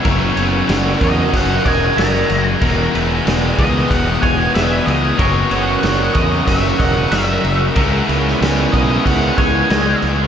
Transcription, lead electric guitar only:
X:1
M:4/4
L:1/16
Q:1/4=93
K:F#mix
V:1 name="Lead electric guitar"
z6 d2 f2 g2 a3 z | z6 d2 f2 g2 e2 d2 | c2 f4 d2 e2 f2 e3 z | z6 d2 f2 g4 z2 |]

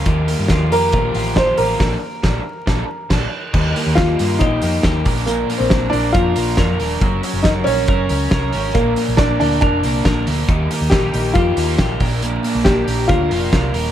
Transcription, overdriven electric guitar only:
X:1
M:4/4
L:1/8
Q:1/4=138
K:Bb
V:1 name="Overdriven electric guitar"
[E,F,B,FG] [B,FG] [E,F,B,FG] [B,FG] [F,B,FG] [B,FG] [E,F,B,FG] [B,FG] | [B,,D,F,B,DA] z [B,,D,F,B,DA] z [F,B,DA] z [B,,D,F,B,DA] z | [E,G,B,EG] [B,EG] [E,G,B,EG] [B,EG] [G,B,EG] [B,EG] [E,G,B,EG] [F,B,DB] | [B,,D,F,B,DB] [F,B,DB] [B,,D,F,B,DB] [F,B,DB] [F,B,DB] [F,B,DB] [B,,D,F,B,DB] [F,B,DB] |
[_G,_D_GB] [DGB] [G,DGB] [DGB] [G,DGB] [DGB] [G,DGB] [DGB] | [B,,D,F,B,DB] [F,B,DB] [B,,D,F,B,DB] [F,B,DB] [F,B,DB] [F,B,DB] [B,,D,F,B,DB] [F,B,DB] | [E,G,B,EG] [B,EG] [E,G,B,EG] [B,EG] [G,B,EG] [B,EG] [E,G,B,EG] [F,B,DB] | [B,,D,F,B,DB] [F,B,DB] [B,,D,F,B,DB] [F,B,DB] [F,B,DB] [F,B,DB] [B,,D,F,B,DB] [F,B,DB] |]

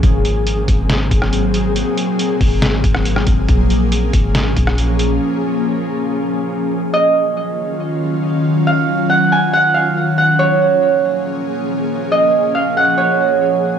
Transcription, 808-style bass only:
X:1
M:4/4
L:1/16
Q:1/4=139
K:Ebdor
V:1 name="808-style bass" clef=bass
A,,,6 A,,,4 A,,,6- | A,,, z4 z A,,,4 A,,,4 A,,,2 | B,,,6 A,,,4 B,,,6 | z16 |
z16 | z16 | z16 | z16 |]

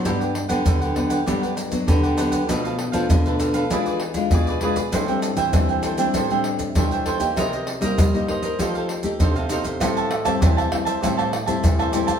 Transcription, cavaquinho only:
X:1
M:4/4
L:1/16
Q:1/4=98
K:Ador
V:1 name="Cavaquinho"
[DGBf] [GBf] z [GBf]2 [GBf] [DGBf] [GBf] [DGBf] [GBf] z2 [DGBf] [GBf] [DGBf] [GBf] | [DAB=f] [ABf] z [ABf]2 [ABf] [DABf] [ABf] [E^GBd] [GBd] z2 [EGBd] [GBd] [EGBd] [GBd] | [Aceg] [ceg] z [ceg]2 [ceg] [Aceg] [ceg] [Aceg] [ceg] z2 [Aceg] [ceg] [Aceg] [ceg] | [_E_Bc_e] [Bce] z [Bce]2 [Bce] [EBce] [Bce] [EAc=f] [Acf] z2 [EAcf] [Acf] [EAcf] [Acf] |
[Gcea] [cea]2 [cea] [Gcea] [cea] z [cea] [Gcea] [cea] z [cea]2 [cea] [Gcea] [cea] |]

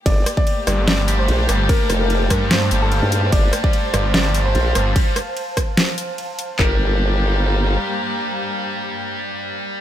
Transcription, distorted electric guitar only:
X:1
M:4/4
L:1/8
Q:"Swing 16ths" 1/4=147
K:Gm
V:1 name="Distorted electric guitar"
z4 z [G,DG]3- | [G,DG]4- [G,DG] [G,DG]3- | [G,DG]4- [G,DG] [G,DG]3- | [G,DG] z6 z |
[G,DG]8- | [G,DG]8 |]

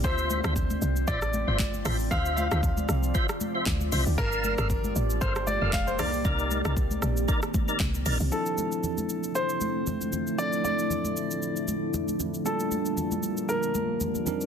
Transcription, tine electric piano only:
X:1
M:4/4
L:1/8
Q:"Swing 16ths" 1/4=116
K:Dm
V:1 name="Tine electric piano"
z8 | z8 | z8 | z8 |
[F,CDEA]8 | [F,CDEA]8 | [G,B,DFa]6- [G,B,DFa] [G,CD_EB] |]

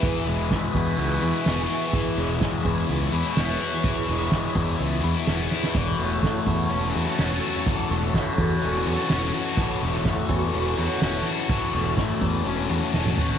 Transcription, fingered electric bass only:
X:1
M:4/4
L:1/16
Q:1/4=126
K:F#dor
V:1 name="Fingered electric bass" clef=bass
z2 E,,,2 z2 E,,2 C,,2 E,, z E,,,2 z2 | z2 E,,,2 z2 E,,2 C,,2 E,, z E,,,2 z2 | z2 E,,,2 z2 E,,2 C,,2 E,, z E,,,2 z2 | E,,,2 E,,,2 z2 E,,2 E,,,2 E,, z E,,,2 z2 |
z2 E,,,2 z2 E,,2 E,,,2 E,, z E,,,2 z2 | z2 E,,,2 z2 E,,2 E,,,2 E,, z E,,,2 z2 | z2 E,,,2 z2 E,,2 E,,,2 E,, z E,,,2 z2 |]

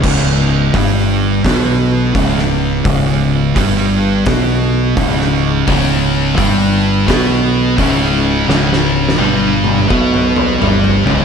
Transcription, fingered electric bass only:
X:1
M:4/4
L:1/8
Q:"Swing" 1/4=85
K:Bmix
V:1 name="Fingered electric bass" clef=bass
C,,,2 =G,,,2 B,,,2 C,,,2 | C,,,2 =G,,,2 B,,,2 C,,,2 | C,,,2 =G,,,2 B,,,2 C,,,2 | C,,,2 =G,,,2 B,,,2 G,,, C,,, |]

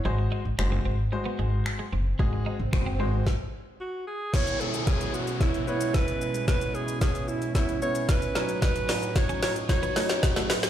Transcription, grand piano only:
X:1
M:4/4
L:1/8
Q:1/4=112
K:C#m
V:1 name="Grand piano"
[G,F^B] z [G,FB] z [G,FB]3 z | [G,FG] z [G,F^B] [G,FB] z4 | [B,Ec] z [B,Ec] z [B,Ec] [B,EB]2 z | [B,Ec] z [B,Ec] z [B,Ec] [B,Ec]2 [F,Dc]- |
[F,Dc] z [F,Dc] z [F,Dc] [F,Dc]2 z |]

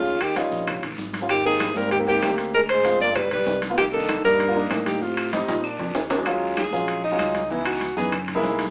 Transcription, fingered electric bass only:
X:1
M:4/4
L:1/8
Q:1/4=193
K:Eblyd
V:1 name="Fingered electric bass" clef=bass
E,,3 B,,,2 A,,, _A,,,2- | _A,,,3 _A,,3 D,,2- | D,,3 G,,,2 =B,,, C,,2- | C,,3 G,,3 A,,2- |
A,,3 B,,2 F,, E,,2- | [K:Ebm] E,,3 B,,,3 D,,2- | D,,3 G,,3 C,,2 |]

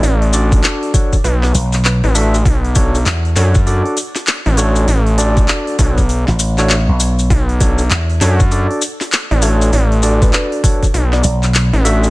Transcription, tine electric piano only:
X:1
M:4/4
L:1/16
Q:"Swing 16ths" 1/4=99
K:Bm
V:1 name="Tine electric piano"
z2 [DFAd]4 [DFAc] z6 z [DFAe] z | z2 [DFAc] z3 [DFAc] z [DFAd]2 z4 [DFAc]2 | z2 [DFAd]4 [DFAc] z4 [DFAc] z4 | z2 [DFAc] z3 [DFAc] z [DFAd]2 z4 [DFAc]2 |
z2 [DFAd]4 [DFAc] z6 z [DFAe] z |]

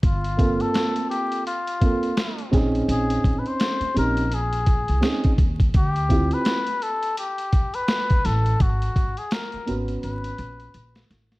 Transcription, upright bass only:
X:1
M:4/4
L:1/16
Q:"Swing 16ths" 1/4=84
K:Bb
V:1 name="Upright bass" clef=bass
G,,,4 z8 z2 B,,,2 | B,,,2 B,,, z3 B,,,4- B,,, C,, z2 E,,2 | D,,4 z8 z2 A,,,2 | _A,,,2 A,,, z3 A,,,2 A,,,2 B,,,2 B,,,2 =A,,,2 |]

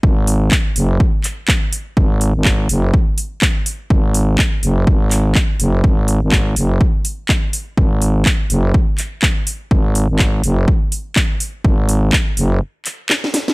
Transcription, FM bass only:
X:1
M:4/4
L:1/16
Q:"Swing 16ths" 1/4=124
K:F#dor
V:1 name="FM bass" clef=bass
G,,,4 z2 F,,,2 z8 | G,,,3 G,,,3 F,,,2 z8 | G,,,4 z2 F,,,2 G,,,4 z2 F,,,2 | G,,,3 G,,,3 F,,,2 z8 |
G,,,4 z2 F,,,2 z8 | G,,,3 G,,,3 F,,,2 z8 | G,,,4 z2 F,,,2 z8 |]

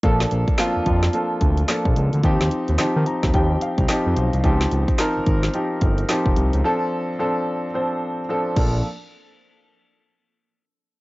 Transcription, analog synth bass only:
X:1
M:4/4
L:1/16
Q:"Swing 16ths" 1/4=109
K:Bb
V:1 name="Analog synth bass" clef=bass
B,,,2 B,,, z2 F,, F,,2 z2 D,,2 z B,,, _D,, =D,, | E,, E,, z E,, E, E, z E,, E,,2 z C,, z F,, _C,, =C,, | _D,,2 D,, z2 _A,,, A,,,2 z2 G,,,2 z F,,, C,, D,, | z12 z2 B,,,2 |
z16 |]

